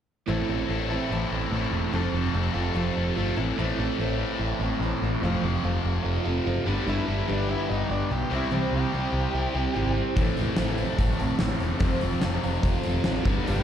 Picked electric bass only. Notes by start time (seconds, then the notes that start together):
0.28 A1
0.49 A1
0.69 A1
1.10 A1
1.31 A1
1.51 A1
1.71 E1
1.92 F1
2.13 F1
2.34 F1
2.55 F1
2.75 F1
2.97 F1
3.17 G1
3.38 A1
3.58 A1
3.79 A1
3.98 A1
4.39 A1
4.60 A1
4.80 A1
5.02 A1
5.22 F1
5.43 F1
5.64 F1
5.84 F1
6.04 F1
6.26 F1
6.46 F#1
6.67 G1
6.86 G1
7.08 G1
7.29 G1
7.70 G1
7.89 G1
8.10 B1
8.31 C2
8.51 C2
8.72 C2
8.93 C2
9.13 C2
9.34 C2
9.55 C2
9.76 G#1
10.17 A1
10.36 A1
10.58 A1
10.99 A1
11.20 A1
11.41 A1
11.60 E1
11.81 F1
12.03 F1
12.24 F1
12.44 F1
12.63 F1
12.86 F1
13.06 A1
13.25 G1
13.49 G1